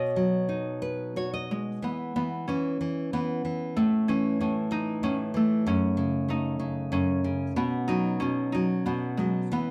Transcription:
0.00 1.79 B2 medium
0.00 1.24 B4 medium
0.00 1.44 C#5 loud
0.00 1.64 D#5 medium
0.16 1.46 F#3 medium
0.49 1.78 D#4 soft
0.82 1.13 B4 medium
1.16 1.81 F#4 medium
1.16 1.32 C#5 medium
1.33 1.79 D#5 medium
1.51 1.87 G#3 medium
1.82 2.15 E3 medium
1.82 2.15 B3 medium
2.16 2.47 E3 medium
2.16 2.24 B3 medium
2.48 2.79 E3 soft
2.48 4.08 C#4 medium
2.81 3.12 E3 soft
3.13 3.43 E3 medium
3.13 6.24 B3 medium
3.45 3.76 E3 soft
3.76 4.39 A2 medium
3.76 5.36 A3 medium
4.08 4.70 E3 medium
4.08 4.41 C#4 medium
4.41 5.02 A2 medium
4.41 4.50 C#4 medium
4.71 5.33 E3 medium
4.71 6.30 D#4 medium
5.03 5.64 A2 medium
5.03 5.12 C#4 medium
5.34 5.65 E3 medium
5.34 8.69 A3 medium
5.66 6.91 F#2 medium
5.66 6.92 C#4 medium
5.97 6.58 C#3 soft
6.28 7.52 A3 soft
6.28 7.87 D#4 medium
6.59 7.23 C#3 soft
6.92 7.54 F#2 medium
6.92 8.19 C#4 medium
7.24 7.55 C#3 soft
7.56 8.21 B2 medium
7.56 8.85 B3 medium
7.88 8.53 F#3 medium
7.88 8.52 D#4 medium
8.20 8.85 B2 medium
8.20 9.71 C#4 medium
8.52 9.18 F#3 medium
8.52 8.61 D#4 medium
8.86 9.50 B2 medium
8.86 9.52 B3 medium
9.17 9.51 F#3 soft
9.17 9.26 G#3 medium
9.52 9.71 E3 medium
9.52 9.71 B3 medium

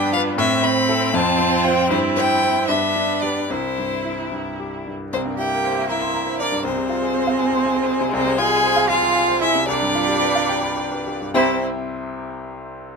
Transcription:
0.00 0.36 G2 loud
0.00 0.39 B3 loud
0.00 0.28 D4 medium
0.00 0.37 D4 loud
0.00 0.11 G5 loud
0.13 0.35 F4 medium
0.13 0.36 B4 medium
0.13 0.21 F5 loud
0.38 1.12 A2 loud
0.38 2.70 C4 loud
0.38 1.13 C4 loud
0.38 0.65 E5 loud
0.63 1.04 C4 medium
0.63 1.16 B5 loud
0.89 1.11 E4 medium
0.89 1.11 A4 medium
1.13 1.88 F2 loud
1.13 1.88 F4 loud
1.13 1.66 A5 loud
1.39 1.80 C4 medium
1.64 1.88 F4 medium
1.64 1.88 C5 medium
1.64 1.90 G5 loud
1.90 2.66 G2 loud
1.90 2.70 E4 loud
1.90 1.98 C5 loud
2.16 2.58 C4 medium
2.16 2.67 G5 loud
2.42 2.66 E4 medium
2.42 2.66 C5 medium
2.68 3.48 G2 medium
2.68 3.50 B3 medium
2.68 3.50 D4 loud
2.68 3.24 E5 loud
2.96 3.39 D4 medium
3.22 3.47 G4 medium
3.22 3.48 B4 medium
3.22 3.52 D5 loud
3.50 5.09 C2 medium
3.50 4.89 E4 medium
3.50 4.70 E4 medium
3.50 4.32 C5 loud
3.78 4.21 G2 medium
4.05 4.48 E4 medium
4.32 4.75 G2 medium
4.59 5.02 G4 medium
4.87 5.13 G2 medium
5.12 6.61 C2 medium
5.12 6.61 A#3 medium
5.12 5.37 C4 medium
5.12 5.21 C5 loud
5.26 5.46 G2 medium
5.38 5.59 E4 medium
5.38 5.91 G4 loud
5.38 5.89 G5 loud
5.52 5.72 A#4 medium
5.64 5.85 C5 medium
5.76 5.97 E5 medium
5.89 6.41 E4 loud
5.89 6.39 E5 loud
5.89 6.10 A#5 medium
6.02 6.23 C6 medium
6.14 6.35 A#5 medium
6.27 6.47 C5 medium
6.40 6.64 D4 medium
6.40 6.60 A#4 medium
6.40 6.64 D5 loud
6.52 6.65 G2 medium
6.64 8.09 C2 medium
6.64 9.64 G#3 medium
6.64 8.10 C4 loud
6.64 8.11 C5 loud
6.77 6.97 C3 medium
6.89 7.09 F4 medium
7.02 7.22 G#4 medium
7.14 7.34 C5 medium
7.27 7.47 F5 medium
7.39 7.59 G#5 medium
7.51 7.72 C6 medium
7.65 7.84 G#5 medium
7.77 7.96 C5 medium
7.89 8.09 G#4 medium
8.01 8.13 C3 medium
8.13 9.64 C2 loud
8.13 8.38 C4 loud
8.13 8.40 C5 loud
8.26 8.46 C3 medium
8.38 8.59 F4 medium
8.38 8.90 G#4 loud
8.38 8.89 G#5 loud
8.51 8.71 G#4 medium
8.63 8.84 C5 medium
8.76 8.97 F5 medium
8.89 9.43 F4 loud
8.89 9.40 F5 loud
8.89 9.10 G#5 loud
9.02 9.23 C6 medium
9.15 9.36 G#5 medium
9.28 9.49 C5 medium
9.41 9.67 E4 loud
9.41 9.63 G#4 medium
9.41 9.67 E5 loud
9.55 9.68 C3 medium
9.68 11.30 C2 loud
9.68 11.08 G3 loud
9.68 11.31 D4 loud
9.68 11.31 D5 loud
9.82 10.03 G2 medium
9.95 10.16 F4 medium
10.08 10.30 G4 medium
10.22 10.43 B4 medium
10.35 10.57 F5 medium
10.49 10.71 G5 medium
10.63 10.86 B5 medium
10.77 11.00 G5 medium
10.91 11.15 B4 medium
11.06 11.29 G4 medium
11.21 11.34 G2 medium
11.34 11.64 C2 loud
11.34 11.64 C3 medium
11.34 11.64 C4 loud
11.34 11.64 E4 medium
11.34 11.65 E4 loud
11.34 11.64 G4 medium
11.34 11.64 C5 loud
11.34 11.64 C5 medium
11.34 11.64 G5 medium

